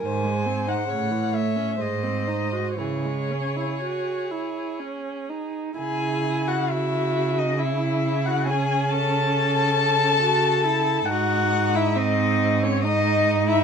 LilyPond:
<<
  \new Staff \with { instrumentName = "Violin" } { \time 3/4 \key cis \minor \tempo 4 = 68 gis''8. fis''8. e''8 dis''4 | cis''2 r4 | gis''8. fis''16 e''8. dis''16 e''8. fis''16 | gis''8 a''2~ a''8 |
fis''8. e''16 dis''8. cis''16 dis''8. e''16 | }
  \new Staff \with { instrumentName = "Violin" } { \time 3/4 \key cis \minor bis'4 cis''4 bis'4 | gis'2. | gis'8. fis'16 e'8. dis'16 e'8. fis'16 | gis'8 a'2~ a'8 |
fis'8. e'16 dis'8. cis'16 dis'8. e'16 | }
  \new Staff \with { instrumentName = "Viola" } { \time 3/4 \key cis \minor dis16 gis16 bis16 dis'16 cis16 e16 a16 cis'16 gis16 bis16 dis'16 fis'16 | e16 gis16 cis'16 e'16 fis'8 e'8 cis'8 dis'8 | e'4 fis'4 e'4 | cis'2 fis'8 e'8 |
dis'4 bis4 dis'4 | }
  \new Staff \with { instrumentName = "Cello" } { \clef bass \time 3/4 \key cis \minor gis,4 a,4 gis,4 | cis4 r2 | cis2.~ | cis2. |
gis,2. | }
>>